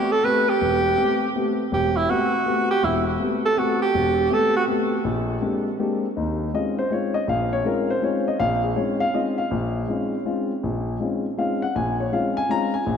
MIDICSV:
0, 0, Header, 1, 3, 480
1, 0, Start_track
1, 0, Tempo, 371287
1, 777, Time_signature, 3, 2, 24, 8
1, 16768, End_track
2, 0, Start_track
2, 0, Title_t, "Tenor saxophone"
2, 0, Program_c, 0, 66
2, 0, Note_on_c, 0, 67, 99
2, 152, Note_on_c, 0, 69, 110
2, 171, Note_off_c, 0, 67, 0
2, 319, Note_on_c, 0, 71, 97
2, 338, Note_off_c, 0, 69, 0
2, 636, Note_on_c, 0, 67, 111
2, 655, Note_off_c, 0, 71, 0
2, 1747, Note_off_c, 0, 67, 0
2, 2244, Note_on_c, 0, 67, 89
2, 2543, Note_on_c, 0, 64, 95
2, 2562, Note_off_c, 0, 67, 0
2, 2721, Note_on_c, 0, 66, 92
2, 2740, Note_off_c, 0, 64, 0
2, 3492, Note_off_c, 0, 66, 0
2, 3499, Note_on_c, 0, 67, 111
2, 3679, Note_on_c, 0, 64, 83
2, 3698, Note_off_c, 0, 67, 0
2, 3976, Note_off_c, 0, 64, 0
2, 4468, Note_on_c, 0, 69, 100
2, 4634, Note_on_c, 0, 66, 88
2, 4653, Note_off_c, 0, 69, 0
2, 4932, Note_off_c, 0, 66, 0
2, 4940, Note_on_c, 0, 67, 106
2, 5601, Note_on_c, 0, 69, 109
2, 5620, Note_off_c, 0, 67, 0
2, 5895, Note_off_c, 0, 69, 0
2, 5900, Note_on_c, 0, 66, 99
2, 5993, Note_off_c, 0, 66, 0
2, 16768, End_track
3, 0, Start_track
3, 0, Title_t, "Grand piano"
3, 0, Program_c, 1, 0
3, 0, Note_on_c, 1, 57, 50
3, 0, Note_on_c, 1, 59, 48
3, 0, Note_on_c, 1, 60, 47
3, 0, Note_on_c, 1, 67, 57
3, 149, Note_off_c, 1, 57, 0
3, 153, Note_off_c, 1, 59, 0
3, 153, Note_off_c, 1, 60, 0
3, 157, Note_off_c, 1, 67, 0
3, 305, Note_on_c, 1, 57, 56
3, 312, Note_on_c, 1, 59, 52
3, 315, Note_on_c, 1, 60, 50
3, 315, Note_on_c, 1, 67, 62
3, 630, Note_off_c, 1, 57, 0
3, 634, Note_off_c, 1, 59, 0
3, 635, Note_off_c, 1, 60, 0
3, 635, Note_off_c, 1, 67, 0
3, 791, Note_on_c, 1, 28, 74
3, 1198, Note_off_c, 1, 28, 0
3, 1260, Note_on_c, 1, 57, 50
3, 1265, Note_on_c, 1, 59, 50
3, 1269, Note_on_c, 1, 67, 53
3, 1270, Note_on_c, 1, 60, 49
3, 1586, Note_off_c, 1, 57, 0
3, 1589, Note_off_c, 1, 59, 0
3, 1591, Note_off_c, 1, 60, 0
3, 1591, Note_off_c, 1, 67, 0
3, 1754, Note_on_c, 1, 57, 53
3, 1758, Note_on_c, 1, 59, 50
3, 1758, Note_on_c, 1, 60, 51
3, 1762, Note_on_c, 1, 67, 56
3, 2073, Note_off_c, 1, 57, 0
3, 2074, Note_off_c, 1, 59, 0
3, 2075, Note_off_c, 1, 60, 0
3, 2077, Note_off_c, 1, 67, 0
3, 2223, Note_on_c, 1, 28, 74
3, 2632, Note_off_c, 1, 28, 0
3, 2699, Note_on_c, 1, 59, 49
3, 2700, Note_on_c, 1, 57, 51
3, 2711, Note_on_c, 1, 60, 45
3, 2713, Note_on_c, 1, 67, 53
3, 3024, Note_off_c, 1, 57, 0
3, 3024, Note_off_c, 1, 59, 0
3, 3030, Note_off_c, 1, 60, 0
3, 3031, Note_off_c, 1, 67, 0
3, 3177, Note_on_c, 1, 57, 54
3, 3180, Note_on_c, 1, 60, 46
3, 3181, Note_on_c, 1, 59, 50
3, 3185, Note_on_c, 1, 67, 58
3, 3502, Note_off_c, 1, 57, 0
3, 3503, Note_off_c, 1, 60, 0
3, 3504, Note_off_c, 1, 59, 0
3, 3506, Note_off_c, 1, 67, 0
3, 3660, Note_on_c, 1, 28, 75
3, 4069, Note_off_c, 1, 28, 0
3, 4135, Note_on_c, 1, 57, 52
3, 4140, Note_on_c, 1, 60, 46
3, 4141, Note_on_c, 1, 59, 49
3, 4146, Note_on_c, 1, 67, 57
3, 4460, Note_off_c, 1, 57, 0
3, 4462, Note_off_c, 1, 60, 0
3, 4463, Note_off_c, 1, 59, 0
3, 4465, Note_off_c, 1, 67, 0
3, 4615, Note_on_c, 1, 59, 48
3, 4616, Note_on_c, 1, 57, 54
3, 4617, Note_on_c, 1, 60, 54
3, 4622, Note_on_c, 1, 67, 61
3, 4939, Note_off_c, 1, 59, 0
3, 4940, Note_off_c, 1, 57, 0
3, 4940, Note_off_c, 1, 60, 0
3, 4943, Note_off_c, 1, 67, 0
3, 5096, Note_on_c, 1, 28, 78
3, 5505, Note_off_c, 1, 28, 0
3, 5568, Note_on_c, 1, 57, 54
3, 5568, Note_on_c, 1, 59, 48
3, 5570, Note_on_c, 1, 60, 49
3, 5579, Note_on_c, 1, 67, 59
3, 5895, Note_off_c, 1, 57, 0
3, 5895, Note_off_c, 1, 59, 0
3, 5896, Note_off_c, 1, 60, 0
3, 5900, Note_off_c, 1, 67, 0
3, 6045, Note_on_c, 1, 57, 55
3, 6055, Note_on_c, 1, 59, 53
3, 6055, Note_on_c, 1, 60, 50
3, 6057, Note_on_c, 1, 67, 60
3, 6373, Note_off_c, 1, 57, 0
3, 6378, Note_off_c, 1, 59, 0
3, 6378, Note_off_c, 1, 60, 0
3, 6379, Note_off_c, 1, 67, 0
3, 6520, Note_on_c, 1, 34, 80
3, 6936, Note_off_c, 1, 34, 0
3, 7003, Note_on_c, 1, 56, 55
3, 7005, Note_on_c, 1, 58, 48
3, 7006, Note_on_c, 1, 60, 48
3, 7008, Note_on_c, 1, 62, 47
3, 7012, Note_on_c, 1, 67, 60
3, 7331, Note_off_c, 1, 56, 0
3, 7332, Note_off_c, 1, 58, 0
3, 7333, Note_off_c, 1, 60, 0
3, 7334, Note_off_c, 1, 62, 0
3, 7336, Note_off_c, 1, 67, 0
3, 7490, Note_on_c, 1, 56, 57
3, 7492, Note_on_c, 1, 58, 51
3, 7496, Note_on_c, 1, 60, 55
3, 7496, Note_on_c, 1, 67, 62
3, 7501, Note_on_c, 1, 62, 51
3, 7815, Note_off_c, 1, 56, 0
3, 7816, Note_off_c, 1, 58, 0
3, 7818, Note_off_c, 1, 60, 0
3, 7818, Note_off_c, 1, 67, 0
3, 7820, Note_off_c, 1, 62, 0
3, 7972, Note_on_c, 1, 51, 69
3, 7973, Note_on_c, 1, 39, 67
3, 8382, Note_off_c, 1, 51, 0
3, 8383, Note_off_c, 1, 39, 0
3, 8452, Note_on_c, 1, 60, 48
3, 8454, Note_on_c, 1, 56, 51
3, 8457, Note_on_c, 1, 61, 44
3, 8457, Note_on_c, 1, 63, 44
3, 8464, Note_on_c, 1, 65, 57
3, 8464, Note_on_c, 1, 75, 83
3, 8756, Note_off_c, 1, 75, 0
3, 8773, Note_on_c, 1, 72, 88
3, 8776, Note_off_c, 1, 60, 0
3, 8777, Note_off_c, 1, 56, 0
3, 8779, Note_off_c, 1, 61, 0
3, 8779, Note_off_c, 1, 63, 0
3, 8782, Note_off_c, 1, 65, 0
3, 8926, Note_off_c, 1, 72, 0
3, 8926, Note_on_c, 1, 56, 51
3, 8927, Note_on_c, 1, 60, 47
3, 8928, Note_on_c, 1, 61, 46
3, 8935, Note_on_c, 1, 63, 50
3, 8940, Note_on_c, 1, 65, 62
3, 8955, Note_on_c, 1, 73, 75
3, 9234, Note_on_c, 1, 75, 93
3, 9242, Note_off_c, 1, 73, 0
3, 9253, Note_off_c, 1, 56, 0
3, 9254, Note_off_c, 1, 60, 0
3, 9254, Note_off_c, 1, 61, 0
3, 9258, Note_off_c, 1, 63, 0
3, 9260, Note_off_c, 1, 65, 0
3, 9397, Note_off_c, 1, 75, 0
3, 9405, Note_on_c, 1, 34, 80
3, 9427, Note_on_c, 1, 77, 89
3, 9718, Note_off_c, 1, 77, 0
3, 9732, Note_on_c, 1, 73, 93
3, 9819, Note_off_c, 1, 34, 0
3, 9886, Note_off_c, 1, 73, 0
3, 9886, Note_on_c, 1, 56, 54
3, 9890, Note_on_c, 1, 60, 51
3, 9890, Note_on_c, 1, 61, 48
3, 9892, Note_on_c, 1, 63, 48
3, 9902, Note_on_c, 1, 65, 60
3, 9908, Note_on_c, 1, 70, 74
3, 10199, Note_off_c, 1, 70, 0
3, 10214, Note_off_c, 1, 56, 0
3, 10216, Note_off_c, 1, 60, 0
3, 10216, Note_off_c, 1, 61, 0
3, 10217, Note_off_c, 1, 63, 0
3, 10219, Note_on_c, 1, 72, 90
3, 10222, Note_off_c, 1, 65, 0
3, 10364, Note_on_c, 1, 56, 52
3, 10366, Note_on_c, 1, 60, 49
3, 10370, Note_off_c, 1, 72, 0
3, 10371, Note_on_c, 1, 65, 60
3, 10372, Note_on_c, 1, 61, 47
3, 10377, Note_on_c, 1, 63, 54
3, 10389, Note_on_c, 1, 73, 73
3, 10680, Note_off_c, 1, 73, 0
3, 10694, Note_off_c, 1, 56, 0
3, 10695, Note_off_c, 1, 60, 0
3, 10697, Note_off_c, 1, 65, 0
3, 10698, Note_off_c, 1, 61, 0
3, 10700, Note_off_c, 1, 63, 0
3, 10702, Note_on_c, 1, 75, 83
3, 10852, Note_off_c, 1, 75, 0
3, 10853, Note_on_c, 1, 34, 83
3, 10854, Note_on_c, 1, 77, 103
3, 11153, Note_off_c, 1, 77, 0
3, 11164, Note_on_c, 1, 68, 65
3, 11265, Note_off_c, 1, 34, 0
3, 11324, Note_off_c, 1, 68, 0
3, 11327, Note_on_c, 1, 56, 56
3, 11329, Note_on_c, 1, 73, 70
3, 11334, Note_on_c, 1, 60, 50
3, 11338, Note_on_c, 1, 61, 49
3, 11340, Note_on_c, 1, 63, 46
3, 11342, Note_on_c, 1, 65, 61
3, 11631, Note_off_c, 1, 73, 0
3, 11641, Note_on_c, 1, 77, 101
3, 11657, Note_off_c, 1, 56, 0
3, 11660, Note_off_c, 1, 60, 0
3, 11662, Note_off_c, 1, 61, 0
3, 11663, Note_off_c, 1, 63, 0
3, 11664, Note_off_c, 1, 65, 0
3, 11802, Note_off_c, 1, 77, 0
3, 11811, Note_on_c, 1, 56, 54
3, 11811, Note_on_c, 1, 60, 50
3, 11815, Note_on_c, 1, 61, 53
3, 11817, Note_on_c, 1, 63, 54
3, 11820, Note_on_c, 1, 65, 66
3, 11824, Note_on_c, 1, 75, 76
3, 12119, Note_off_c, 1, 75, 0
3, 12126, Note_on_c, 1, 77, 88
3, 12139, Note_off_c, 1, 56, 0
3, 12139, Note_off_c, 1, 60, 0
3, 12141, Note_off_c, 1, 61, 0
3, 12142, Note_off_c, 1, 63, 0
3, 12143, Note_off_c, 1, 65, 0
3, 12294, Note_on_c, 1, 34, 75
3, 12708, Note_off_c, 1, 34, 0
3, 12778, Note_on_c, 1, 56, 53
3, 12778, Note_on_c, 1, 60, 45
3, 12783, Note_on_c, 1, 61, 51
3, 12787, Note_on_c, 1, 63, 47
3, 12787, Note_on_c, 1, 65, 55
3, 13104, Note_off_c, 1, 56, 0
3, 13104, Note_off_c, 1, 60, 0
3, 13107, Note_off_c, 1, 61, 0
3, 13108, Note_off_c, 1, 65, 0
3, 13109, Note_off_c, 1, 63, 0
3, 13202, Note_off_c, 1, 77, 0
3, 13254, Note_on_c, 1, 56, 50
3, 13258, Note_on_c, 1, 60, 50
3, 13261, Note_on_c, 1, 61, 48
3, 13262, Note_on_c, 1, 63, 48
3, 13265, Note_on_c, 1, 65, 63
3, 13583, Note_off_c, 1, 56, 0
3, 13585, Note_off_c, 1, 60, 0
3, 13587, Note_off_c, 1, 61, 0
3, 13587, Note_off_c, 1, 63, 0
3, 13589, Note_off_c, 1, 65, 0
3, 13747, Note_on_c, 1, 34, 76
3, 14157, Note_off_c, 1, 34, 0
3, 14214, Note_on_c, 1, 56, 52
3, 14216, Note_on_c, 1, 60, 47
3, 14219, Note_on_c, 1, 63, 51
3, 14221, Note_on_c, 1, 61, 49
3, 14226, Note_on_c, 1, 65, 58
3, 14545, Note_off_c, 1, 56, 0
3, 14546, Note_off_c, 1, 60, 0
3, 14547, Note_off_c, 1, 63, 0
3, 14548, Note_off_c, 1, 61, 0
3, 14551, Note_off_c, 1, 65, 0
3, 14704, Note_on_c, 1, 56, 55
3, 14711, Note_on_c, 1, 60, 47
3, 14712, Note_on_c, 1, 61, 48
3, 14716, Note_on_c, 1, 63, 53
3, 14717, Note_on_c, 1, 65, 65
3, 14718, Note_on_c, 1, 77, 73
3, 15012, Note_off_c, 1, 77, 0
3, 15027, Note_on_c, 1, 78, 86
3, 15030, Note_off_c, 1, 56, 0
3, 15034, Note_off_c, 1, 60, 0
3, 15034, Note_off_c, 1, 61, 0
3, 15036, Note_off_c, 1, 63, 0
3, 15037, Note_off_c, 1, 65, 0
3, 15181, Note_off_c, 1, 78, 0
3, 15196, Note_on_c, 1, 34, 76
3, 15201, Note_on_c, 1, 80, 91
3, 15494, Note_off_c, 1, 80, 0
3, 15517, Note_on_c, 1, 73, 74
3, 15603, Note_off_c, 1, 34, 0
3, 15667, Note_off_c, 1, 73, 0
3, 15673, Note_on_c, 1, 56, 57
3, 15676, Note_on_c, 1, 61, 53
3, 15677, Note_on_c, 1, 63, 48
3, 15679, Note_on_c, 1, 60, 50
3, 15683, Note_on_c, 1, 65, 61
3, 15683, Note_on_c, 1, 77, 89
3, 15975, Note_off_c, 1, 77, 0
3, 15991, Note_on_c, 1, 80, 104
3, 15996, Note_off_c, 1, 56, 0
3, 15998, Note_off_c, 1, 61, 0
3, 15998, Note_off_c, 1, 63, 0
3, 15999, Note_off_c, 1, 60, 0
3, 16001, Note_off_c, 1, 65, 0
3, 16145, Note_off_c, 1, 80, 0
3, 16149, Note_on_c, 1, 56, 59
3, 16153, Note_on_c, 1, 60, 52
3, 16154, Note_on_c, 1, 61, 49
3, 16160, Note_on_c, 1, 65, 65
3, 16161, Note_on_c, 1, 63, 48
3, 16171, Note_on_c, 1, 82, 106
3, 16460, Note_off_c, 1, 82, 0
3, 16469, Note_on_c, 1, 80, 94
3, 16475, Note_off_c, 1, 56, 0
3, 16477, Note_off_c, 1, 60, 0
3, 16477, Note_off_c, 1, 61, 0
3, 16480, Note_off_c, 1, 63, 0
3, 16480, Note_off_c, 1, 65, 0
3, 16627, Note_on_c, 1, 34, 80
3, 16768, Note_off_c, 1, 34, 0
3, 16768, Note_off_c, 1, 80, 0
3, 16768, End_track
0, 0, End_of_file